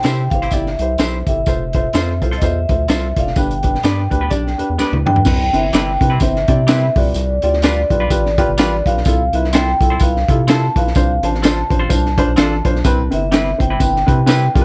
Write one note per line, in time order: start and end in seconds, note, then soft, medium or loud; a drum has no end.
0.00 0.29 C3 medium
0.00 0.33 G5 loud
0.00 closed hi-hat medium
0.04 0.29 C3 medium
0.04 0.21 C4 medium
0.04 0.22 E4 medium
0.04 0.20 E4 medium
0.04 0.22 G4 medium
0.04 0.20 G4 medium
0.04 0.22 C5 medium
0.04 0.20 C5 medium
0.04 snare loud
0.04 tambourine medium
0.30 0.49 G1 medium
0.30 0.44 E4 medium
0.30 0.44 G4 medium
0.30 0.44 C5 medium
0.30 0.52 F5 loud
0.30 kick medium
0.30 closed hi-hat medium
0.42 0.53 C4 soft
0.42 0.52 E4 medium
0.42 0.52 G4 medium
0.42 0.52 C5 medium
0.42 closed hi-hat soft
0.51 0.76 G1 medium
0.51 0.68 E4 medium
0.51 0.68 G4 medium
0.51 0.68 D5 medium
0.51 1.00 E5 medium
0.51 kick medium
0.51 closed hi-hat medium
0.51 tambourine medium
0.66 snare soft
0.79 0.97 C2 loud
0.79 0.91 E4 medium
0.79 0.91 G4 medium
0.79 0.91 C5 medium
0.79 closed hi-hat medium
0.98 1.23 B1 medium
0.98 1.16 C4 medium
0.98 1.17 E4 medium
0.98 1.15 E4 medium
0.98 1.17 G4 medium
0.98 1.15 G4 medium
0.98 1.12 C5 medium
0.98 1.17 C5 medium
0.98 1.15 C5 medium
0.98 snare loud
0.98 closed hi-hat medium
0.98 tambourine medium
1.27 1.44 G1 medium
1.27 1.39 E4 medium
1.27 1.39 G4 medium
1.27 1.39 A4 medium
1.27 2.18 E5 medium
1.27 kick medium
1.27 closed hi-hat medium
1.46 1.88 F1 loud
1.46 1.62 F4 medium
1.46 1.62 A4 medium
1.46 1.62 C5 medium
1.46 kick loud
1.46 closed hi-hat medium
1.46 tambourine medium
1.73 1.85 F4 medium
1.73 1.86 A4 medium
1.73 1.85 C5 medium
1.73 kick medium
1.73 closed hi-hat medium
1.93 2.23 F2 medium
1.93 2.11 C4 medium
1.93 2.09 F4 medium
1.93 2.12 F4 medium
1.93 2.09 A4 medium
1.93 2.12 A4 medium
1.93 2.09 C5 medium
1.93 2.12 C5 medium
1.93 snare loud
1.93 closed hi-hat medium
1.93 tambourine medium
2.21 2.39 C2 medium
2.21 2.33 F4 medium
2.21 2.33 A4 medium
2.21 2.33 C5 medium
2.21 kick medium
2.21 closed hi-hat medium
2.31 2.42 C4 soft
2.31 2.42 F4 medium
2.31 2.42 A4 medium
2.31 2.41 C5 medium
2.31 closed hi-hat medium
2.37 2.43 D#5 medium
2.37 closed hi-hat medium
2.41 2.66 E2 medium
2.41 2.57 F4 medium
2.41 2.57 A4 medium
2.41 2.57 C5 medium
2.41 3.20 E5 medium
2.41 kick medium
2.41 tambourine medium
2.69 2.87 D2 medium
2.69 2.80 F4 medium
2.69 2.81 A4 medium
2.69 2.80 C5 medium
2.69 kick medium
2.69 closed hi-hat medium
2.88 3.13 C2 loud
2.88 3.06 C4 medium
2.88 3.06 F4 medium
2.88 3.04 F4 medium
2.88 3.04 A4 medium
2.88 3.07 A4 medium
2.88 3.04 C5 medium
2.88 3.07 C5 medium
2.88 snare loud
2.88 closed hi-hat medium
2.88 tambourine medium
3.16 3.34 F1 medium
3.16 3.28 F4 medium
3.16 3.28 A4 medium
3.16 3.28 D5 medium
3.16 3.38 F5 medium
3.16 kick medium
3.16 closed hi-hat medium
3.27 snare soft
3.36 3.78 G1 loud
3.36 4.07 G2 medium
3.36 3.51 D4 medium
3.36 3.52 G4 medium
3.36 3.52 B4 loud
3.36 4.76 G5 medium
3.36 kick loud
3.36 closed hi-hat medium
3.36 tambourine medium
3.51 closed hi-hat medium
3.63 3.74 D4 medium
3.63 3.75 G4 medium
3.63 3.75 B4 medium
3.63 kick medium
3.63 closed hi-hat medium
3.75 snare soft
3.83 4.08 G2 medium
3.83 4.01 B3 medium
3.83 3.99 D4 medium
3.83 4.01 D4 medium
3.83 3.99 G4 medium
3.83 4.02 G4 medium
3.83 4.02 B4 medium
3.83 3.99 D5 medium
3.83 snare loud
3.83 closed hi-hat medium
3.83 tambourine medium
4.11 4.29 D2 medium
4.11 4.22 D4 medium
4.11 4.22 G4 medium
4.11 4.22 B4 medium
4.11 kick medium
4.11 closed hi-hat medium
4.21 4.32 B3 soft
4.21 4.32 D4 soft
4.21 4.32 G4 soft
4.21 4.31 B4 medium
4.30 4.56 B1 medium
4.30 4.46 D4 loud
4.30 4.46 G4 loud
4.30 4.46 D5 loud
4.30 kick medium
4.30 closed hi-hat medium
4.30 tambourine medium
4.47 snare soft
4.58 4.63 E2 soft
4.58 4.70 D4 medium
4.58 4.70 G4 medium
4.58 4.70 B4 medium
4.58 closed hi-hat medium
4.70 4.78 E2 medium
4.78 4.85 D2 soft
4.78 4.96 B3 medium
4.78 4.94 D4 medium
4.78 4.97 D4 medium
4.78 4.94 G4 medium
4.78 4.97 G4 medium
4.78 4.94 B4 medium
4.78 4.97 B4 medium
4.78 snare medium
4.78 tambourine loud
4.92 5.05 D2 medium
4.92 high tom medium
5.06 5.24 G2 loud
5.06 5.17 D4 medium
5.06 5.17 G4 medium
5.06 5.17 B4 medium
5.06 5.55 G5 medium
5.06 mid tom medium
5.16 floor tom medium
5.25 5.50 C2 loud
5.25 5.97 C3 medium
5.25 5.41 C4 medium
5.25 5.41 E4 medium
5.25 5.41 B4 loud
5.25 kick loud
5.25 crash medium
5.25 tambourine medium
5.53 5.71 G1 medium
5.53 5.65 C4 medium
5.53 5.65 E4 medium
5.53 5.65 B4 medium
5.53 5.75 E5 medium
5.53 closed hi-hat medium
5.73 5.98 G1 medium
5.73 5.91 G3 medium
5.73 5.91 C4 medium
5.73 5.89 C4 medium
5.73 5.89 E4 medium
5.73 5.91 E4 medium
5.73 5.89 B4 medium
5.73 5.92 B4 loud
5.73 6.23 G5 medium
5.73 snare loud
5.73 closed hi-hat medium
5.73 tambourine medium
6.01 6.19 C3 medium
6.01 6.12 C4 medium
6.01 6.12 E4 medium
6.01 6.12 B4 medium
6.01 kick loud
6.01 closed hi-hat medium
6.10 6.21 G3 soft
6.10 6.21 C4 medium
6.10 6.21 E4 medium
6.10 6.20 B4 medium
6.20 6.45 G1 medium
6.20 6.37 C4 medium
6.20 6.37 E4 medium
6.20 6.37 C5 medium
6.20 6.68 E5 medium
6.20 kick medium
6.20 closed hi-hat medium
6.20 tambourine medium
6.36 snare soft
6.48 6.90 C3 loud
6.48 6.59 C4 medium
6.48 6.59 E4 medium
6.48 6.60 D5 loud
6.48 kick medium
6.48 closed hi-hat medium
6.67 6.85 G3 medium
6.67 6.85 C4 medium
6.67 6.83 C4 loud
6.67 6.86 E4 medium
6.67 6.84 E4 medium
6.67 6.84 B4 loud
6.67 6.86 B4 medium
6.67 6.97 E5 medium
6.67 snare loud
6.67 closed hi-hat medium
6.67 tambourine loud
6.96 7.13 C2 loud
6.96 7.59 C3 medium
6.96 7.33 F4 medium
6.96 7.33 G4 medium
6.96 7.33 B4 medium
6.96 7.43 D5 medium
6.96 kick loud
6.96 open hi-hat medium
7.14 7.39 C2 loud
7.14 closed hi-hat medium
7.14 tambourine medium
7.42 7.85 D2 medium
7.42 7.54 F4 medium
7.42 7.54 G4 medium
7.42 7.54 D5 medium
7.42 8.90 D5 medium
7.42 closed hi-hat medium
7.53 snare soft
7.62 7.80 G3 medium
7.62 7.81 D4 medium
7.62 7.78 F4 medium
7.62 7.81 F4 medium
7.62 7.78 G4 medium
7.62 7.78 B4 medium
7.62 7.81 B4 medium
7.62 snare loud
7.62 closed hi-hat medium
7.62 tambourine medium
7.90 8.08 B1 medium
7.90 8.02 F4 medium
7.90 8.02 G4 medium
7.90 8.02 B4 medium
7.90 kick medium
7.90 closed hi-hat medium
8.00 8.11 G3 medium
8.00 8.11 D4 medium
8.00 8.11 F4 medium
8.00 8.10 B4 medium
8.10 8.43 A1 medium
8.10 8.26 F4 medium
8.10 8.26 G4 medium
8.10 8.26 B4 loud
8.10 kick medium
8.10 closed hi-hat medium
8.10 tambourine medium
8.26 snare soft
8.38 8.49 F4 loud
8.38 8.49 G4 loud
8.38 8.49 B4 loud
8.38 kick medium
8.38 closed hi-hat medium
8.48 8.57 G1 medium
8.58 8.82 A1 loud
8.58 8.75 G3 medium
8.58 8.75 D4 medium
8.58 8.76 F4 medium
8.58 8.74 F4 loud
8.58 8.74 G4 loud
8.58 8.74 B4 loud
8.58 8.76 B4 medium
8.58 snare loud
8.58 closed hi-hat medium
8.58 tambourine loud
8.86 9.03 B1 loud
8.86 8.97 F4 medium
8.86 8.97 G4 medium
8.86 8.98 B4 medium
8.86 9.35 F5 loud
8.86 kick medium
8.86 closed hi-hat medium
8.97 snare soft
9.05 9.30 C2 loud
9.05 9.77 C3 medium
9.05 9.21 E4 medium
9.05 9.21 F4 medium
9.05 9.22 A4 loud
9.05 kick loud
9.05 closed hi-hat medium
9.05 tambourine medium
9.33 9.74 C2 loud
9.33 9.45 E4 medium
9.33 9.45 F4 medium
9.33 9.45 B4 medium
9.33 9.54 E5 medium
9.33 closed hi-hat medium
9.44 snare soft
9.53 9.70 C4 medium
9.53 9.68 E4 medium
9.53 9.71 E4 medium
9.53 9.68 F4 medium
9.53 9.68 A4 medium
9.53 9.71 A4 medium
9.53 9.71 C5 loud
9.53 10.03 G5 loud
9.53 snare loud
9.53 closed hi-hat medium
9.53 tambourine medium
9.81 9.98 C2 medium
9.81 9.92 E4 medium
9.81 9.92 F4 medium
9.81 9.92 A4 medium
9.81 kick medium
9.81 closed hi-hat medium
9.90 10.01 C4 soft
9.90 10.01 E4 medium
9.90 10.01 A4 medium
9.90 10.00 C5 medium
10.00 10.24 C2 loud
10.00 10.15 E4 medium
10.00 10.15 F4 medium
10.00 10.15 B4 medium
10.00 10.50 F5 medium
10.00 kick medium
10.00 closed hi-hat loud
10.00 tambourine medium
10.16 snare soft
10.28 10.69 C3 loud
10.28 10.40 E4 medium
10.28 10.40 F4 medium
10.28 10.40 A4 loud
10.28 kick medium
10.28 closed hi-hat medium
10.47 10.65 C4 medium
10.47 10.65 E4 medium
10.47 10.63 E4 loud
10.47 10.63 F4 medium
10.47 10.65 A4 medium
10.47 10.63 A4 loud
10.47 10.66 C5 medium
10.47 10.78 A5 loud
10.47 snare loud
10.47 closed hi-hat medium
10.47 tambourine loud
10.76 10.93 B1 loud
10.76 10.86 E4 medium
10.76 10.87 F4 medium
10.76 10.87 B4 medium
10.76 11.26 F5 loud
10.76 kick loud
10.76 closed hi-hat medium
10.87 snare soft
10.95 11.19 C2 loud
10.95 11.67 C3 medium
10.95 11.10 D4 medium
10.95 11.11 F4 medium
10.95 11.11 C5 loud
10.95 kick loud
10.95 closed hi-hat medium
10.95 tambourine medium
11.23 11.64 A1 medium
11.23 11.34 D4 medium
11.23 11.34 F4 medium
11.23 11.34 C5 medium
11.23 12.62 A5 loud
11.23 closed hi-hat medium
11.35 snare soft
11.43 11.60 C4 medium
11.43 11.58 D4 medium
11.43 11.58 F4 medium
11.43 11.60 F4 medium
11.43 11.61 A4 medium
11.43 11.58 C5 medium
11.43 11.61 C5 medium
11.43 snare loud
11.43 closed hi-hat medium
11.43 tambourine medium
11.70 11.88 A1 loud
11.70 11.81 D4 medium
11.70 11.81 F4 medium
11.70 11.81 C5 medium
11.70 kick medium
11.70 closed hi-hat medium
11.80 11.91 C4 soft
11.80 11.90 F4 medium
11.80 11.90 A4 medium
11.80 11.90 C5 medium
11.90 12.23 C2 medium
11.90 12.05 D4 medium
11.90 12.05 F4 medium
11.90 12.05 C5 medium
11.90 kick medium
11.90 closed hi-hat loud
11.90 tambourine medium
12.06 snare soft
12.18 12.29 D4 loud
12.18 12.29 F4 medium
12.18 12.29 C5 loud
12.18 kick loud
12.18 closed hi-hat medium
12.28 12.36 B1 loud
12.36 12.62 A1 loud
12.36 12.54 C4 medium
12.36 12.52 D4 loud
12.36 12.55 F4 medium
12.36 12.53 F4 loud
12.36 12.52 A4 loud
12.36 12.55 A4 medium
12.36 12.55 C5 medium
12.36 snare loud
12.36 closed hi-hat medium
12.36 tambourine loud
12.65 12.82 B1 medium
12.65 12.76 D4 medium
12.65 12.76 F4 medium
12.65 12.76 C5 loud
12.65 kick medium
12.65 closed hi-hat medium
12.76 snare soft
12.84 13.09 C2 loud
12.84 13.56 C3 medium
12.84 13.00 C4 loud
12.84 13.00 E4 loud
12.84 13.00 B4 loud
12.84 kick loud
12.84 closed hi-hat medium
12.84 tambourine medium
13.11 13.54 G1 loud
13.11 13.23 C4 medium
13.11 13.23 E4 medium
13.11 13.23 B4 medium
13.11 13.57 E5 medium
13.11 closed hi-hat medium
13.31 13.49 G3 medium
13.31 13.47 C4 medium
13.31 13.50 C4 medium
13.31 13.47 E4 medium
13.31 13.50 E4 medium
13.31 13.47 B4 medium
13.31 13.50 B4 medium
13.31 snare loud
13.31 closed hi-hat loud
13.31 tambourine medium
13.58 13.78 G1 loud
13.58 13.70 C4 medium
13.58 13.70 E4 medium
13.58 13.70 C5 medium
13.58 14.52 G5 loud
13.58 kick medium
13.58 closed hi-hat medium
13.70 13.81 G3 soft
13.70 13.80 C4 soft
13.70 13.80 E4 medium
13.70 13.80 B4 medium
13.79 14.04 G1 medium
13.79 13.95 C4 medium
13.79 13.95 E4 medium
13.79 13.95 B4 medium
13.79 kick medium
13.79 closed hi-hat medium
13.79 tambourine medium
13.96 snare soft
14.06 14.49 C3 loud
14.06 14.18 C4 medium
14.06 14.18 E4 medium
14.06 14.18 B4 loud
14.06 kick medium
14.06 closed hi-hat medium
14.26 14.45 G3 medium
14.26 14.42 C4 loud
14.26 14.45 C4 medium
14.26 14.42 E4 medium
14.26 14.45 E4 medium
14.26 14.42 B4 loud
14.26 14.46 B4 medium
14.26 snare loud
14.26 closed hi-hat medium
14.26 tambourine medium
14.55 14.65 C2 loud
14.55 14.65 C3 medium
14.55 14.65 F4 medium
14.55 14.65 G4 medium
14.55 14.60 A#4 medium
14.55 kick loud
14.55 closed hi-hat medium
14.61 14.65 B4 loud